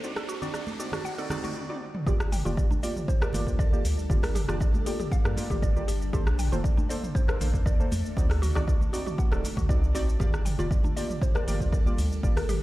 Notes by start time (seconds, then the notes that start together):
Already playing: D4, riser
0.03 D2 D3 A3 C4 D#4 F#4 D5, cabasa
0.16 A4, cross-stick, muted conga, cabasa
0.29 F#4, cabasa
0.42 C4 D#4 F#4 D5, low conga, cabasa
0.54 D5, cross-stick, muted conga, cabasa
0.67 high conga, cabasa
0.80 C4 D#4 F#4 D5, cabasa
0.92 F#4, cross-stick, low conga, cabasa
1.04 F#5, muted conga, cabasa
1.18 C4 D#4 F#4 A4 D5, cabasa
1.30 C4 D#4 F#4 D5, cross-stick, high conga, low conga, cabasa
1.43 C4 D#4 F#4 D5, muted conga, high conga, cabasa
1.56 high tom
1.69 C4 D#4 F#4 D5, high tom
1.95 mid tom
2.06 G1 G3 A#3 D4 F4 G4 A4 D5, kick, low conga, cabasa
2.20 cross-stick, muted conga, cabasa
2.32 G5, mid tom, open hi-hat, cabasa
2.45 F1 A#3 F4 G4 D5, high conga, low conga, cabasa
2.57 D5, kick, muted conga, cabasa
2.71 D4, high conga, cabasa
2.83 A#3 F4 G4 D5, open hi-hat, cabasa
2.96 mid tom, cabasa
3.08 C5, kick, muted conga, cabasa
3.22 A#3 F4 G4 A#4 D5, cross-stick, cabasa
3.33 G1 A#3 F4 G4 D5, open hi-hat, high conga, low conga, cabasa
3.47 D2 A#3 F4 G4 D5, kick, muted conga, cabasa
3.59 D5, kick, cabasa
3.73 A#3 F4 G4 D5, cabasa
3.84 D2, open hi-hat, muted conga, high conga, cabasa
3.99 cabasa
4.10 G1 A#3 F4 G4 D5, kick, low conga, cabasa
4.23 A#4, cross-stick, open hi-hat, muted conga, cabasa
4.35 G4, mid tom, open hi-hat, cabasa
4.48 F1 A#3 F4 G4 D5, cross-stick, low conga, cabasa
4.60 D5, kick, muted conga, cabasa
4.74 high conga, cabasa
4.86 A#3 F4 G4 D5, open hi-hat, cabasa
5.00 G4, mid tom, cabasa
5.12 F5, kick, muted conga, cabasa
5.25 G2 A#3 F4 G4 A#4 D5, cross-stick, cabasa
5.37 A#3 F4 G4 D5, open hi-hat, high conga, cabasa
5.50 G1 A#3 F4 G4 D5, kick, mid tom, muted conga, high conga, cabasa
5.62 D5, kick, cabasa
5.76 A#3 F4 G4 D5, cabasa
5.88 G4, open hi-hat, muted conga, cabasa
6.02 cabasa
6.13 A#1 A3 A#3 D4 G4 A4 C5, kick, low conga, cabasa
6.27 cross-stick, muted conga, cabasa
6.39 G5, mid tom, open hi-hat, cabasa
6.52 F1 A#3 D4 F4 A4 C5, high conga, low conga, cabasa
6.64 D5, kick, muted conga, cabasa
6.77 D4, high conga, cabasa
6.89 A#3 D4 A4 C5 D5, open hi-hat, cabasa
7.04 mid tom, cabasa
7.15 C5, kick, muted conga, cabasa
7.28 A#3 D4 A4 A#4 C5, cross-stick, cabasa
7.41 A#1 A#3 D4 A4 C5, open hi-hat, high conga, low conga, cabasa
7.54 F2 A#3 D4 A4 C5, kick, muted conga, cabasa
7.66 D5, kick, cabasa
7.79 A#3 D4 A4 C5, cabasa
7.92 F2, open hi-hat, muted conga, high conga, cabasa
8.06 cabasa
8.17 D2 D3 C4 D4 D#4 F#4 D5, kick, low conga, cabasa
8.30 A4, cross-stick, open hi-hat, muted conga, cabasa
8.42 F#4, mid tom, open hi-hat, cabasa
8.55 C2 C4 D#4 F#4 D5, cross-stick, low conga, cabasa
8.68 D5, kick, muted conga, cabasa
8.81 high conga, cabasa
8.93 C4 D#4 F#4 D5, open hi-hat, cabasa
9.06 F#4, mid tom, cabasa
9.18 F#5, kick, muted conga, cabasa
9.32 D1 C4 D#4 F#4 A4 D5, cross-stick, cabasa
9.44 open hi-hat, high conga, cabasa
9.57 D2 F#4, kick, mid tom, muted conga, high conga, cabasa
9.69 C2 C4 D#4 F#4 D5, kick, cabasa
9.84 cabasa
9.95 A1 C4 D#4 F#4 D5, open hi-hat, muted conga, cabasa
10.09 cabasa
10.20 G1 G3 A#3 D4 F4 G4 A4 D5, kick, low conga, cabasa
10.33 cross-stick, muted conga, cabasa
10.45 G5, mid tom, open hi-hat, cabasa
10.59 F1 A#3 F4 G4 D5, high conga, low conga, cabasa
10.71 D5, kick, muted conga, cabasa
10.84 D4, high conga, cabasa
10.97 A#3 F4 G4 D5, open hi-hat, cabasa
11.10 mid tom, cabasa
11.22 C5, kick, muted conga, cabasa
11.35 A#3 F4 G4 A#4 D5, cross-stick, cabasa
11.47 G1 A#3 F4 G4 D5, open hi-hat, high conga, low conga, cabasa
11.60 D2 A#3 F4 G4 D5, kick, muted conga, cabasa
11.73 D5, kick, cabasa
11.86 A#3 F4 G4 D5, cabasa
11.98 D2, open hi-hat, muted conga, high conga, cabasa
12.12 cabasa
12.23 G1 A#3 F4 G4 D5, kick, low conga, cabasa
12.37 A#4, cross-stick, open hi-hat, muted conga, cabasa
12.49 G4, mid tom, open hi-hat, cabasa